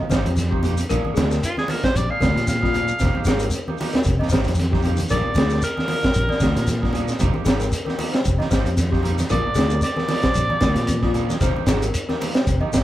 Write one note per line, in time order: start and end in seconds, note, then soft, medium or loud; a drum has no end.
0.09 0.24 G#1 medium
0.09 0.28 G#3 medium
0.09 0.28 A#3 medium
0.09 0.28 D#4 medium
0.09 0.28 G4 medium
0.09 0.31 C5 medium
0.09 kick medium
0.09 snare medium
0.09 closed hi-hat soft
0.09 high conga medium
0.09 shekere medium
0.26 0.82 F2 medium
0.26 closed hi-hat medium
0.26 shekere soft
0.36 snare soft
0.36 closed hi-hat medium
0.36 high conga medium
0.36 shekere medium
0.51 0.62 A#3 soft
0.51 0.64 D#4 medium
0.51 0.72 G4 medium
0.51 0.63 G4 medium
0.51 kick medium
0.63 0.80 G#3 medium
0.63 0.80 A#3 medium
0.63 0.81 G4 medium
0.63 closed hi-hat medium
0.63 low conga medium
0.63 shekere soft
0.77 closed hi-hat medium
0.77 shekere medium
0.89 1.03 A#1 medium
0.89 1.04 F3 medium
0.89 1.04 A#3 medium
0.89 1.04 D4 medium
0.89 1.03 G#4 medium
0.89 1.10 A#4 loud
0.89 kick loud
0.89 closed hi-hat medium
0.89 low conga medium
0.89 shekere medium
1.05 1.16 A#3 soft
1.05 1.16 D4 medium
1.05 1.16 G#4 medium
1.05 muted fingered electric bass stroke soft
1.05 high conga medium
1.14 1.39 D2 medium
1.14 1.33 F3 medium
1.14 1.33 A#3 medium
1.14 1.34 D4 medium
1.14 1.26 G#4 medium
1.14 1.34 G#4 medium
1.14 snare medium
1.14 closed hi-hat medium
1.14 high conga medium
1.14 shekere medium
1.30 1.51 A#4 medium
1.30 snare soft
1.30 shekere medium
1.43 1.57 F4 medium
1.43 closed hi-hat medium
1.43 shekere medium
1.57 1.69 A#3 soft
1.57 1.69 D4 medium
1.57 1.69 G#4 medium
1.57 1.72 G#4 medium
1.57 snare soft
1.57 high conga medium
1.68 1.86 F3 medium
1.68 1.86 A#3 medium
1.68 1.87 D4 medium
1.68 1.87 G#4 medium
1.68 1.86 A#4 medium
1.68 open hi-hat medium
1.68 high conga medium
1.68 shekere soft
1.83 2.04 C5 medium
1.83 1.98 C5 medium
1.83 kick medium
1.83 snare medium
1.83 closed hi-hat medium
1.83 shekere soft
1.96 2.08 A#1 medium
1.96 2.12 D5 medium
1.96 kick medium
1.96 closed hi-hat medium
1.96 shekere medium
2.10 2.21 A#3 soft
2.10 2.21 D4 soft
2.10 2.21 G#4 medium
2.10 2.19 D5 medium
2.10 2.47 F5 medium
2.20 2.34 D2 medium
2.20 2.38 F3 medium
2.20 2.38 A#3 medium
2.20 2.39 D4 medium
2.20 2.39 G#4 medium
2.20 2.42 A#4 medium
2.20 kick medium
2.20 snare medium
2.20 closed hi-hat soft
2.20 high conga medium
2.20 shekere medium
2.35 2.91 A#2 medium
2.35 snare soft
2.35 closed hi-hat soft
2.35 shekere soft
2.47 3.50 F5 loud
2.47 snare soft
2.47 closed hi-hat medium
2.47 high conga medium
2.47 shekere medium
2.62 2.74 A#3 soft
2.62 2.74 D4 soft
2.62 2.83 F4 medium
2.62 2.74 G#4 medium
2.62 kick medium
2.62 snare soft
2.74 2.91 F3 medium
2.74 2.92 A#3 medium
2.74 2.92 D4 medium
2.74 2.92 G#4 medium
2.74 closed hi-hat medium
2.74 low conga medium
2.74 shekere soft
2.88 shekere medium
2.99 3.13 F1 medium
2.99 3.15 G#3 medium
2.99 3.15 A#3 medium
2.99 3.15 D#4 medium
2.99 3.15 G4 medium
2.99 3.21 C5 medium
2.99 kick medium
2.99 snare soft
2.99 closed hi-hat medium
2.99 low conga medium
2.99 shekere medium
3.15 3.26 A#3 medium
3.15 3.27 D#4 medium
3.15 3.27 G4 medium
3.15 high conga medium
3.25 3.49 G#1 medium
3.25 3.44 G#3 medium
3.25 3.44 A#3 medium
3.25 3.44 D#4 medium
3.25 3.44 G4 medium
3.25 3.38 G#4 medium
3.25 snare medium
3.25 closed hi-hat soft
3.25 high conga medium
3.25 shekere medium
3.40 3.62 A#4 medium
3.40 closed hi-hat medium
3.40 shekere medium
3.50 closed hi-hat medium
3.50 shekere medium
3.67 3.79 A#3 soft
3.67 3.79 D#4 soft
3.67 3.80 G4 medium
3.67 3.88 A#4 medium
3.67 high conga medium
3.78 3.96 G#3 medium
3.78 3.96 A#3 medium
3.78 3.97 D#4 medium
3.78 3.97 G4 medium
3.78 open hi-hat medium
3.78 high conga medium
3.78 shekere soft
3.92 4.14 A#4 medium
3.92 snare medium
3.92 closed hi-hat medium
3.92 low conga medium
3.92 shekere soft
4.03 4.18 F1 medium
4.03 kick medium
4.03 closed hi-hat medium
4.03 shekere medium
4.19 4.31 A#3 soft
4.19 4.31 D#4 medium
4.19 4.32 G4 medium
4.19 4.29 D#5 medium
4.19 snare soft
4.19 high conga medium
4.29 4.45 G#1 medium
4.29 4.49 G#3 medium
4.29 4.49 A#3 medium
4.29 4.49 D#4 medium
4.29 4.49 G4 medium
4.29 4.52 C5 medium
4.29 kick medium
4.29 high conga medium
4.29 shekere medium
4.33 snare medium
4.33 closed hi-hat soft
4.44 5.02 F2 medium
4.44 shekere soft
4.48 snare soft
4.48 closed hi-hat medium
4.54 shekere medium
4.59 snare soft
4.59 closed hi-hat medium
4.59 high conga medium
4.71 4.83 A#3 medium
4.71 4.84 D#4 medium
4.71 4.93 G4 medium
4.71 4.84 G4 medium
4.71 kick medium
4.71 snare soft
4.82 5.01 G#3 medium
4.82 5.01 A#3 medium
4.82 5.02 D#4 medium
4.82 5.02 G4 medium
4.82 closed hi-hat medium
4.82 low conga medium
4.82 shekere soft
4.97 closed hi-hat medium
4.97 high conga medium
4.97 shekere medium
5.08 5.24 A#1 medium
5.08 5.25 F3 medium
5.08 5.24 A#3 medium
5.08 5.23 D4 medium
5.08 5.23 G#4 medium
5.08 5.31 A#4 medium
5.08 5.62 D5 medium
5.08 kick medium
5.08 snare soft
5.08 closed hi-hat medium
5.08 low conga medium
5.08 shekere medium
5.24 5.35 A#3 soft
5.24 5.36 D4 soft
5.24 5.36 G#4 soft
5.24 muted fingered electric bass stroke soft
5.34 5.60 D2 medium
5.34 5.53 F3 medium
5.34 5.53 A#3 medium
5.34 5.54 D4 medium
5.34 5.49 G#4 medium
5.34 5.54 G#4 medium
5.34 snare medium
5.34 closed hi-hat soft
5.34 high conga medium
5.34 shekere medium
5.50 5.73 A#4 medium
5.50 snare soft
5.50 shekere medium
5.62 7.17 A#4 loud
5.62 closed hi-hat medium
5.62 shekere medium
5.76 5.88 A#3 soft
5.76 5.88 D4 soft
5.76 5.88 G#4 medium
5.76 5.98 A#4 medium
5.76 snare soft
5.76 high conga medium
5.88 6.06 F3 medium
5.88 6.06 A#3 medium
5.88 6.06 D4 medium
5.88 6.06 G#4 medium
5.88 open hi-hat medium
5.88 high conga medium
5.88 shekere soft
6.03 kick medium
6.03 snare medium
6.03 closed hi-hat medium
6.03 low conga medium
6.03 shekere soft
6.14 6.28 A#1 medium
6.14 kick medium
6.14 closed hi-hat medium
6.14 shekere medium
6.29 6.41 A#3 soft
6.29 6.41 D4 medium
6.29 6.41 G#4 medium
6.29 6.39 D5 medium
6.29 snare soft
6.29 high conga medium
6.40 6.55 D2 medium
6.40 6.58 F3 medium
6.40 6.59 A#3 medium
6.40 6.59 D4 medium
6.40 6.59 G#4 medium
6.40 6.62 A#4 medium
6.40 kick medium
6.40 snare medium
6.40 closed hi-hat soft
6.40 high conga medium
6.40 shekere medium
6.56 7.12 A#2 medium
6.56 snare soft
6.56 closed hi-hat medium
6.56 shekere soft
6.67 snare soft
6.67 closed hi-hat medium
6.67 high conga medium
6.67 shekere medium
6.82 6.93 A#3 soft
6.82 6.93 D4 medium
6.82 7.03 F4 medium
6.82 6.94 G#4 medium
6.82 kick medium
6.82 snare soft
6.93 7.11 F3 medium
6.93 7.11 A#3 medium
6.93 7.11 D4 medium
6.93 7.12 G#4 medium
6.93 closed hi-hat soft
6.93 low conga medium
6.93 shekere soft
7.08 snare soft
7.08 shekere medium
7.18 7.34 F1 medium
7.18 7.35 G#3 medium
7.18 7.34 A#3 medium
7.18 7.34 D#4 medium
7.18 7.33 G4 medium
7.18 7.40 C5 medium
7.18 kick medium
7.18 closed hi-hat medium
7.18 low conga medium
7.18 shekere medium
7.34 7.45 A#3 soft
7.34 7.46 D#4 medium
7.34 7.46 G4 medium
7.34 high conga medium
7.45 7.69 G#1 medium
7.45 7.63 G#3 medium
7.45 7.64 A#3 medium
7.45 7.64 D#4 medium
7.45 7.64 G4 medium
7.45 7.57 G#4 medium
7.45 snare medium
7.45 closed hi-hat soft
7.45 high conga medium
7.45 shekere medium
7.59 7.81 A#4 medium
7.59 snare soft
7.59 closed hi-hat medium
7.59 shekere medium
7.72 closed hi-hat medium
7.72 shekere medium
7.85 7.97 A#3 soft
7.85 7.97 D#4 medium
7.85 7.98 G4 medium
7.85 8.07 A#4 medium
7.85 snare soft
7.85 high conga medium
7.98 8.16 G#3 medium
7.98 8.16 A#3 medium
7.98 8.16 D#4 medium
7.98 8.16 G4 medium
7.98 open hi-hat medium
7.98 high conga medium
7.98 shekere soft
8.12 8.34 C5 medium
8.12 snare medium
8.12 closed hi-hat medium
8.12 shekere soft
8.25 8.39 F1 medium
8.25 kick medium
8.25 closed hi-hat medium
8.25 shekere medium
8.39 8.50 A#3 soft
8.39 8.50 D#4 medium
8.39 8.51 G4 medium
8.39 8.49 D#5 medium
8.39 snare soft
8.39 high conga medium
8.51 8.65 G#1 medium
8.51 8.69 G#3 medium
8.51 8.69 A#3 medium
8.51 8.69 D#4 medium
8.51 8.69 G4 medium
8.51 8.72 C5 medium
8.51 kick medium
8.51 snare medium
8.51 closed hi-hat soft
8.51 high conga medium
8.51 shekere medium
8.66 9.22 F2 medium
8.66 closed hi-hat soft
8.66 shekere soft
8.77 snare soft
8.77 closed hi-hat medium
8.77 high conga medium
8.77 shekere medium
8.91 9.02 A#3 medium
8.91 9.02 D#4 medium
8.91 9.13 G4 medium
8.91 9.03 G4 medium
8.91 kick medium
8.91 snare soft
9.03 9.21 G#3 medium
9.03 9.21 A#3 medium
9.03 9.21 D#4 medium
9.03 9.21 G4 medium
9.03 closed hi-hat medium
9.03 low conga medium
9.03 shekere soft
9.18 snare soft
9.18 closed hi-hat medium
9.18 high conga medium
9.18 shekere medium
9.29 9.44 A#1 medium
9.29 9.45 F3 medium
9.29 9.44 A#3 medium
9.29 9.44 D4 medium
9.29 9.42 G#4 medium
9.29 9.51 A#4 medium
9.29 9.82 D5 loud
9.29 kick medium
9.29 closed hi-hat medium
9.29 low conga medium
9.29 shekere medium
9.44 9.55 A#3 soft
9.44 9.56 D4 medium
9.44 9.55 G#4 soft
9.44 muted fingered electric bass stroke soft
9.55 9.80 D2 medium
9.55 9.74 F3 medium
9.55 9.74 A#3 medium
9.55 9.74 D4 medium
9.55 9.67 G#4 medium
9.55 9.74 G#4 medium
9.55 closed hi-hat medium
9.55 high conga medium
9.55 shekere medium
9.59 snare medium
9.70 9.92 A#4 medium
9.70 shekere medium
9.81 11.37 D5 loud
9.81 snare soft
9.81 closed hi-hat medium
9.81 shekere medium
9.96 10.07 A#3 soft
9.96 10.08 D4 soft
9.96 10.08 G#4 medium
9.96 10.18 A#4 medium
9.96 snare soft
9.96 high conga medium
10.08 10.26 F3 medium
10.08 10.26 A#3 medium
10.08 10.27 D4 medium
10.08 10.27 G#4 medium
10.08 snare soft
10.08 open hi-hat medium
10.08 high conga loud
10.08 shekere soft
10.22 10.45 C5 medium
10.22 kick medium
10.22 snare medium
10.22 closed hi-hat medium
10.22 low conga medium
10.22 shekere soft
10.34 10.49 A#1 medium
10.34 kick medium
10.34 closed hi-hat medium
10.34 shekere medium
10.49 10.60 A#3 soft
10.49 10.60 D4 medium
10.49 10.61 G#4 medium
10.49 10.60 D5 medium
10.49 high conga medium
10.61 10.75 D2 medium
10.61 10.79 F3 medium
10.61 10.79 A#3 medium
10.61 10.79 D4 medium
10.61 10.79 G#4 medium
10.61 10.84 A#4 medium
10.61 kick medium
10.61 snare medium
10.61 closed hi-hat medium
10.61 high conga medium
10.61 shekere medium
10.76 11.32 A#2 medium
10.76 snare soft
10.76 closed hi-hat medium
10.76 shekere soft
10.87 closed hi-hat medium
10.87 high conga medium
10.87 shekere medium
11.02 11.13 A#3 soft
11.02 11.14 D4 medium
11.02 11.24 F4 medium
11.02 11.14 G#4 medium
11.02 kick medium
11.02 snare soft
11.14 11.32 F3 medium
11.14 11.32 A#3 medium
11.14 11.32 D4 medium
11.14 11.32 G#4 medium
11.14 closed hi-hat medium
11.14 low conga medium
11.14 shekere soft
11.30 snare soft
11.30 high conga medium
11.30 shekere medium
11.41 11.54 F1 medium
11.41 11.56 G#3 medium
11.41 11.56 A#3 medium
11.41 11.55 D#4 medium
11.41 11.55 G4 loud
11.41 11.62 C5 medium
11.41 kick medium
11.41 snare soft
11.41 closed hi-hat medium
11.41 low conga medium
11.41 shekere medium
11.55 11.67 A#3 soft
11.55 11.67 D#4 medium
11.55 11.67 G4 medium
11.55 muted fingered electric bass stroke soft
11.55 high conga medium
11.66 11.90 G#1 medium
11.66 11.84 G#3 medium
11.66 11.85 A#3 medium
11.66 11.85 D#4 medium
11.66 11.85 G4 medium
11.66 11.80 G#4 medium
11.66 snare medium
11.66 closed hi-hat medium
11.66 high conga medium
11.66 shekere medium
11.82 12.04 A#4 medium
11.82 closed hi-hat soft
11.82 shekere medium
11.94 closed hi-hat medium
11.94 shekere medium
12.09 12.19 A#3 soft
12.09 12.19 D#4 soft
12.09 12.20 G4 medium
12.09 12.29 A#4 medium
12.09 snare soft
12.09 high conga medium
12.20 12.37 G#3 medium
12.20 12.37 A#3 medium
12.20 12.37 D#4 medium
12.20 12.38 G4 medium
12.20 open hi-hat medium
12.20 high conga medium
12.20 shekere soft
12.35 12.56 C5 medium
12.35 snare medium
12.35 closed hi-hat medium
12.35 shekere soft
12.47 12.59 F1 medium
12.47 kick medium
12.47 closed hi-hat medium
12.47 shekere medium
12.61 12.72 A#3 medium
12.61 12.72 D#4 medium
12.61 12.73 G4 medium
12.61 12.70 D#5 medium
12.61 high conga medium
12.73 12.84 G#1 medium
12.73 12.84 G#3 medium
12.73 12.84 A#3 medium
12.73 12.84 D#4 medium
12.73 12.84 G4 medium
12.73 kick medium
12.73 snare medium
12.73 closed hi-hat soft
12.73 high conga medium
12.73 shekere medium